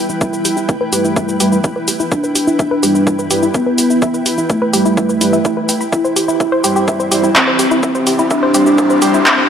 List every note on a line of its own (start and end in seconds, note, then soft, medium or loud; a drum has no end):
0.00 0.70 G3 loud
0.00 7.64 E4 medium
0.00 6.53 B4 medium
0.00 6.68 G5 medium
0.09 0.17 E4 medium
0.09 shaker soft
0.21 0.29 E5 medium
0.21 kick loud
0.21 shaker soft
0.33 0.38 B4 medium
0.33 shaker soft
0.45 0.50 G4 medium
0.45 open hi-hat loud
0.45 shaker medium
0.57 0.62 E4 medium
0.57 shaker soft
0.69 2.02 A3 loud
0.69 0.74 E5 medium
0.69 kick loud
0.69 shaker soft
0.81 0.84 B4 loud
0.92 1.37 G3 medium
0.92 1.37 E4 medium
0.92 1.00 G4 loud
0.92 1.37 B4 medium
0.92 open hi-hat medium
0.92 shaker medium
1.05 1.12 E4 medium
1.05 shaker soft
1.16 1.20 E5 medium
1.16 kick loud
1.16 shaker soft
1.29 1.34 B4 medium
1.29 shaker soft
1.40 1.57 G3 medium
1.40 1.57 E4 medium
1.40 1.45 G4 loud
1.40 1.57 B4 loud
1.40 open hi-hat loud
1.40 shaker medium
1.52 1.57 E4 medium
1.52 shaker soft
1.64 1.72 E5 medium
1.64 kick loud
1.64 shaker soft
1.76 1.81 B4 medium
1.88 1.93 G4 medium
1.88 open hi-hat medium
1.88 shaker medium
2.00 2.07 E4 medium
2.00 shaker soft
2.12 3.45 D4 loud
2.12 2.19 E5 medium
2.12 kick loud
2.12 shaker soft
2.24 2.29 B4 medium
2.24 shaker soft
2.35 2.41 G4 medium
2.35 open hi-hat loud
2.35 shaker medium
2.47 2.53 E4 medium
2.47 shaker soft
2.59 2.64 E5 medium
2.59 kick loud
2.59 shaker soft
2.71 2.74 B4 loud
2.83 3.28 G3 medium
2.83 3.28 E4 medium
2.83 2.91 G4 loud
2.83 3.28 B4 medium
2.83 open hi-hat medium
2.83 shaker medium
2.95 3.03 E4 medium
2.95 shaker soft
3.07 3.10 E5 medium
3.07 kick loud
3.07 shaker soft
3.19 3.24 B4 medium
3.19 shaker soft
3.30 3.48 G3 medium
3.30 3.48 E4 medium
3.30 3.36 G4 loud
3.30 3.48 B4 loud
3.30 open hi-hat loud
3.30 shaker medium
3.43 3.48 E4 medium
3.43 shaker soft
3.54 4.40 B3 loud
3.54 3.62 E5 medium
3.54 kick loud
3.54 shaker soft
3.66 3.72 B4 medium
3.78 3.83 G4 medium
3.78 open hi-hat medium
3.78 shaker medium
3.90 3.98 E4 medium
3.90 shaker soft
4.02 4.10 E5 medium
4.02 kick loud
4.02 shaker soft
4.14 4.19 B4 medium
4.14 shaker soft
4.26 4.31 G4 medium
4.26 open hi-hat loud
4.26 shaker medium
4.38 4.43 E4 medium
4.38 shaker soft
4.50 5.83 A3 loud
4.50 4.55 E5 medium
4.50 kick loud
4.50 shaker soft
4.62 4.65 B4 loud
4.73 5.18 G3 medium
4.73 5.18 E4 medium
4.73 4.81 G4 loud
4.73 5.18 B4 medium
4.73 open hi-hat medium
4.73 shaker medium
4.86 4.93 E4 medium
4.86 shaker soft
4.97 5.00 E5 medium
4.97 kick loud
4.97 shaker soft
5.09 5.14 B4 medium
5.09 shaker soft
5.21 5.38 G3 medium
5.21 5.29 E4 medium
5.21 5.38 E4 medium
5.21 5.38 B4 loud
5.21 open hi-hat loud
5.21 shaker medium
5.33 5.36 E5 medium
5.33 shaker soft
5.45 5.50 E4 medium
5.45 kick loud
5.45 shaker soft
5.57 5.60 B4 medium
5.69 5.74 G5 medium
5.69 open hi-hat medium
5.69 shaker medium
5.81 5.84 B5 medium
5.81 shaker soft
5.92 9.49 C4 medium
5.92 7.26 E4 loud
5.92 6.00 E5 medium
5.92 kick loud
5.92 riser medium
5.92 shaker soft
6.04 9.49 G4 medium
6.04 6.10 C5 medium
6.04 shaker soft
6.16 6.22 G4 medium
6.16 open hi-hat loud
6.16 shaker medium
6.28 6.33 E4 medium
6.28 shaker soft
6.40 6.45 E5 medium
6.40 kick loud
6.40 shaker soft
6.52 6.55 C5 loud
6.64 7.09 G3 medium
6.64 7.09 E4 medium
6.64 6.72 G4 loud
6.64 7.09 C5 medium
6.64 open hi-hat medium
6.64 shaker medium
6.76 6.81 G4 medium
6.76 shaker soft
6.88 6.91 E5 medium
6.88 kick loud
6.88 shaker soft
7.00 7.05 C5 medium
7.00 shaker soft
7.10 7.29 G3 medium
7.10 7.29 E4 medium
7.10 7.17 G4 loud
7.10 7.29 C5 loud
7.10 9.49 D5 medium
7.10 open hi-hat loud
7.10 shaker medium
7.24 7.29 E4 medium
7.24 shaker soft
7.35 8.21 C4 loud
7.35 7.43 E5 medium
7.35 kick loud
7.35 clap loud
7.35 shaker soft
7.47 7.53 C5 medium
7.59 7.64 G4 medium
7.59 9.49 E5 medium
7.59 open hi-hat medium
7.59 shaker medium
7.71 7.79 E4 medium
7.71 shaker soft
7.83 7.91 E5 medium
7.83 kick loud
7.83 shaker soft
7.95 8.00 C5 medium
7.95 shaker soft
8.07 8.12 G4 medium
8.07 open hi-hat loud
8.07 shaker medium
8.19 8.24 E4 medium
8.19 shaker soft
8.30 9.49 D4 loud
8.30 8.36 E5 medium
8.30 kick loud
8.30 shaker soft
8.43 8.46 C5 loud
8.54 8.99 G3 medium
8.54 8.99 E4 medium
8.54 8.62 G4 loud
8.54 8.99 C5 medium
8.54 open hi-hat medium
8.54 shaker medium
8.66 8.72 G4 medium
8.66 shaker soft
8.78 8.81 E5 medium
8.78 kick loud
8.78 shaker soft
8.90 8.95 C5 medium
8.90 shaker soft
9.02 9.19 G3 medium
9.02 9.19 E4 medium
9.02 9.07 G4 loud
9.02 9.19 C5 loud
9.02 open hi-hat loud
9.02 shaker medium
9.14 9.19 E4 medium
9.14 shaker soft
9.26 9.34 E5 medium
9.26 kick loud
9.26 clap loud
9.26 shaker soft
9.38 9.43 C5 medium